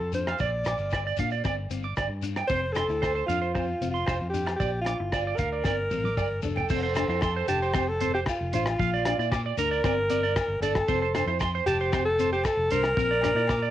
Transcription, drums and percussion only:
0.12 closed hi-hat soft
0.12 shekere medium
0.27 cross-stick medium
0.27 low agogo medium
0.27 shekere soft
0.38 kick medium
0.38 shekere medium
0.64 cross-stick medium
0.64 closed hi-hat soft
0.64 low agogo medium
0.64 shekere medium
0.78 shekere soft
0.90 kick medium
0.90 cross-stick medium
0.90 low agogo medium
0.90 shekere medium
1.17 kick medium
1.17 closed hi-hat soft
1.17 shekere medium
1.30 shekere soft
1.44 kick medium
1.44 cross-stick medium
1.44 low agogo medium
1.44 shekere medium
1.70 closed hi-hat soft
1.70 shekere medium
1.83 shekere soft
1.96 kick medium
1.96 cross-stick medium
1.96 low agogo medium
1.96 shekere medium
2.22 closed hi-hat soft
2.22 shekere medium
2.36 cross-stick medium
2.36 low agogo medium
2.36 shekere soft
2.49 kick medium
2.49 shekere medium
2.75 cross-stick medium
2.75 closed hi-hat soft
2.75 low agogo medium
2.75 shekere medium
2.89 shekere soft
3.03 kick medium
3.03 cross-stick medium
3.03 low agogo medium
3.03 shekere medium
3.29 closed hi-hat soft
3.29 shekere medium
3.43 shekere soft
3.55 kick medium
3.55 cross-stick medium
3.55 low agogo medium
3.55 shekere medium
3.82 closed hi-hat soft
3.82 shekere medium
3.95 shekere soft
4.06 kick medium
4.06 cross-stick medium
4.06 low agogo medium
4.06 shekere medium
4.34 closed hi-hat soft
4.34 shekere medium
4.46 cross-stick medium
4.46 low agogo medium
4.46 shekere soft
4.60 kick medium
4.60 shekere medium
4.85 cross-stick medium
4.85 closed hi-hat soft
4.85 low agogo medium
5.12 kick medium
5.12 cross-stick medium
5.12 low agogo medium
5.12 shekere medium
5.38 kick medium
5.38 closed hi-hat soft
5.38 shekere medium
5.52 shekere soft
5.64 kick medium
5.64 snare soft
5.64 low agogo medium
5.64 shekere medium
5.91 high tom soft
5.91 shekere medium
6.04 high tom soft
6.04 shekere soft
6.17 kick medium
6.17 mid tom medium
6.17 low agogo medium
6.17 shekere medium
6.42 floor tom medium
6.42 shekere medium
6.56 floor tom medium
6.56 low agogo medium
6.56 shekere soft
6.69 kick medium
6.69 crash medium
6.69 shekere medium
6.95 cross-stick medium
6.95 closed hi-hat soft
6.95 low agogo medium
6.95 shekere medium
7.10 shekere soft
7.21 kick medium
7.21 cross-stick medium
7.21 low agogo medium
7.21 shekere medium
7.48 closed hi-hat soft
7.48 shekere medium
7.62 shekere soft
7.73 kick medium
7.73 cross-stick medium
7.73 low agogo medium
7.73 shekere medium
8.00 closed hi-hat soft
8.00 shekere medium
8.16 shekere soft
8.26 kick medium
8.26 cross-stick medium
8.26 low agogo medium
8.26 shekere medium
8.53 closed hi-hat soft
8.53 shekere medium
8.66 cross-stick medium
8.66 low agogo medium
8.66 shekere soft
8.79 kick medium
8.79 shekere medium
9.05 cross-stick medium
9.05 closed hi-hat medium
9.05 low agogo medium
9.20 shekere soft
9.32 kick medium
9.32 cross-stick medium
9.32 low agogo medium
9.32 shekere medium
9.58 closed hi-hat medium
9.58 shekere loud
9.73 shekere soft
9.84 kick medium
9.84 cross-stick medium
9.84 low agogo medium
9.84 shekere medium
10.10 closed hi-hat medium
10.10 shekere medium
10.24 shekere soft
10.36 kick medium
10.36 cross-stick medium
10.36 low agogo medium
10.36 shekere medium
10.63 closed hi-hat soft
10.63 shekere medium
10.75 kick medium
10.75 cross-stick medium
10.75 low agogo medium
10.75 shekere soft
10.88 kick loud
10.88 shekere medium
11.15 cross-stick medium
11.15 closed hi-hat soft
11.15 low agogo medium
11.15 shekere medium
11.27 shekere soft
11.40 kick medium
11.40 cross-stick medium
11.40 low agogo medium
11.40 shekere medium
11.67 closed hi-hat soft
11.67 shekere loud
11.80 shekere soft
11.92 kick medium
11.92 cross-stick medium
11.92 low agogo medium
11.92 shekere medium
12.19 closed hi-hat medium
12.19 shekere medium
12.32 shekere soft
12.44 kick medium
12.44 cross-stick medium
12.44 low agogo medium
12.44 shekere medium
12.71 closed hi-hat soft
12.71 shekere loud
12.83 cross-stick medium
12.83 low agogo medium
12.83 shekere soft
12.97 kick medium
12.97 shekere medium
13.21 cross-stick medium
13.21 closed hi-hat medium
13.21 low agogo medium
13.21 shekere medium
13.38 shekere soft
13.47 kick medium
13.47 cross-stick medium
13.47 low agogo medium
13.47 shekere medium

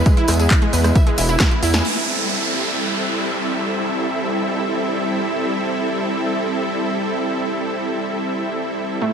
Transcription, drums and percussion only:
0.06 kick loud
0.06 closed hi-hat medium
0.06 tambourine soft
0.17 closed hi-hat medium
0.28 cross-stick medium
0.28 open hi-hat loud
0.28 tambourine medium
0.34 closed hi-hat medium
0.39 closed hi-hat medium
0.39 tambourine medium
0.50 kick loud
0.50 clap loud
0.50 closed hi-hat medium
0.50 tambourine soft
0.62 closed hi-hat medium
0.73 open hi-hat loud
0.73 tambourine medium
0.84 cross-stick medium
0.84 closed hi-hat medium
0.84 tambourine medium
0.95 kick loud
0.95 closed hi-hat medium
0.95 tambourine soft
1.07 closed hi-hat medium
1.18 open hi-hat loud
1.18 tambourine loud
1.29 closed hi-hat medium
1.29 tambourine soft
1.40 kick loud
1.40 snare loud
1.40 clap loud
1.40 closed hi-hat medium
1.40 tambourine soft
1.51 closed hi-hat medium
1.63 open hi-hat loud
1.63 tambourine medium
1.74 snare medium
1.74 closed hi-hat medium
1.74 tambourine medium
1.85 crash medium

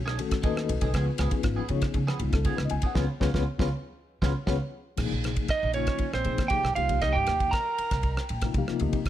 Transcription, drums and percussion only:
0.08 cross-stick medium
0.19 ride medium
0.31 kick medium
0.31 cross-stick medium
0.31 ride medium
0.43 kick loud
0.43 ride medium
0.57 cross-stick medium
0.69 ride medium
0.81 kick medium
0.81 ride medium
0.94 kick medium
0.94 cross-stick medium
0.94 ride medium
1.18 cross-stick medium
1.18 ride medium
1.31 kick medium
1.31 ride medium
1.43 kick loud
1.43 cross-stick medium
1.43 ride medium
1.69 ride medium
1.82 kick medium
1.82 cross-stick medium
1.82 ride medium
1.94 kick medium
1.94 ride medium
2.08 cross-stick medium
2.20 ride medium
2.33 kick medium
2.33 cross-stick medium
2.33 ride medium
2.45 kick loud
2.45 ride medium
2.58 cross-stick medium
2.70 ride medium
2.82 kick medium
2.82 ride medium
2.95 kick loud
2.95 snare loud
3.21 kick medium
3.21 snare medium
3.34 kick medium
3.34 snare medium
3.59 kick medium
3.59 snare medium
4.22 kick medium
4.22 snare medium
4.47 kick medium
4.47 snare loud
4.97 kick medium
4.97 cross-stick medium
4.97 crash medium
5.24 cross-stick medium
5.24 ride medium
5.36 kick medium
5.36 ride medium
5.48 kick loud
5.48 cross-stick medium
5.48 ride medium
5.73 ride medium
5.87 kick medium
5.87 cross-stick medium
5.87 ride medium
5.98 kick medium
5.98 ride medium
6.14 cross-stick medium
6.25 ride soft
6.38 kick medium
6.38 cross-stick medium
6.38 ride medium
6.50 kick loud
6.50 ride medium
6.65 cross-stick medium
6.76 ride medium
6.89 kick medium
6.89 ride medium
7.02 kick medium
7.02 cross-stick medium
7.02 ride medium
7.27 cross-stick medium
7.27 ride medium
7.40 kick medium
7.40 ride medium
7.53 kick loud
7.53 cross-stick medium
7.53 ride medium
7.78 ride medium
7.91 kick medium
7.91 cross-stick medium
7.91 ride medium
8.03 kick medium
8.03 ride medium
8.17 cross-stick medium
8.29 ride medium
8.41 kick medium
8.41 cross-stick medium
8.41 ride medium
8.54 kick loud
8.54 ride medium
8.68 cross-stick medium
8.80 ride medium
8.93 kick medium
8.93 ride medium
9.05 kick medium
9.05 ride medium

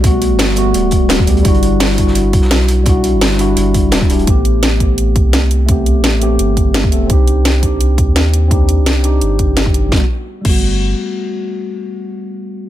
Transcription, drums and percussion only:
0.04 kick loud
0.04 closed hi-hat medium
0.22 closed hi-hat medium
0.39 snare loud
0.39 closed hi-hat medium
0.49 snare medium
0.56 closed hi-hat medium
0.74 closed hi-hat medium
0.91 kick medium
0.91 closed hi-hat medium
1.09 snare loud
1.09 closed hi-hat medium
1.19 kick loud
1.19 snare soft
1.27 closed hi-hat medium
1.37 closed hi-hat soft
1.45 kick loud
1.45 closed hi-hat medium
1.54 closed hi-hat soft
1.63 closed hi-hat medium
1.80 snare loud
1.80 closed hi-hat medium
1.80 open hi-hat medium
1.90 snare soft
1.98 kick medium
1.98 closed hi-hat medium
2.07 snare soft
2.15 closed hi-hat medium
2.33 kick loud
2.33 closed hi-hat medium
2.42 snare soft
2.51 snare loud
2.51 closed hi-hat medium
2.60 snare soft
2.68 closed hi-hat medium
2.86 kick loud
2.86 closed hi-hat medium
3.04 closed hi-hat medium
3.21 snare loud
3.21 closed hi-hat medium
3.31 snare medium
3.39 closed hi-hat medium
3.57 closed hi-hat medium
3.74 kick medium
3.74 closed hi-hat medium
3.92 snare loud
3.92 closed hi-hat medium
4.01 kick loud
4.01 snare soft
4.10 closed hi-hat medium
4.19 closed hi-hat soft
4.27 kick loud
4.27 closed hi-hat medium
4.45 closed hi-hat medium
4.63 snare loud
4.63 closed hi-hat medium
4.80 kick medium
4.80 closed hi-hat medium
4.98 closed hi-hat medium
5.16 kick loud
5.16 closed hi-hat medium
5.33 snare loud
5.33 closed hi-hat medium
5.51 closed hi-hat medium
5.69 kick loud
5.69 closed hi-hat medium
5.86 closed hi-hat medium
6.04 snare loud
6.04 closed hi-hat medium
6.22 closed hi-hat medium
6.39 closed hi-hat medium
6.57 kick medium
6.57 closed hi-hat medium
6.74 snare loud
6.74 closed hi-hat medium
6.84 kick loud
6.92 closed hi-hat medium
7.10 kick loud
7.10 closed hi-hat medium
7.27 closed hi-hat medium
7.45 snare loud
7.45 closed hi-hat medium
7.63 kick medium
7.63 closed hi-hat medium
7.81 closed hi-hat loud
7.98 kick medium
7.98 closed hi-hat medium
8.16 snare loud
8.16 closed hi-hat medium
8.34 closed hi-hat medium
8.51 kick loud
8.51 closed hi-hat medium
8.69 closed hi-hat medium
8.86 snare loud
8.86 closed hi-hat medium
9.04 closed hi-hat medium
9.21 closed hi-hat medium
9.39 kick medium
9.39 closed hi-hat medium
9.57 snare loud
9.57 closed hi-hat medium
9.66 kick medium
9.74 closed hi-hat medium
9.92 kick loud
9.92 snare medium
10.45 kick loud
10.45 crash medium

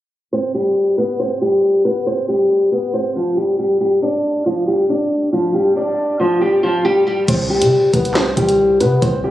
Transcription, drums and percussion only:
7.28 kick loud
7.28 closed hi-hat medium
7.28 crash loud
7.62 closed hi-hat medium
7.94 kick medium
7.94 closed hi-hat medium
8.05 closed hi-hat medium
8.15 snare loud
8.15 clap medium
8.37 kick medium
8.37 closed hi-hat medium
8.49 closed hi-hat medium
8.80 closed hi-hat medium
9.02 kick loud
9.02 closed hi-hat medium

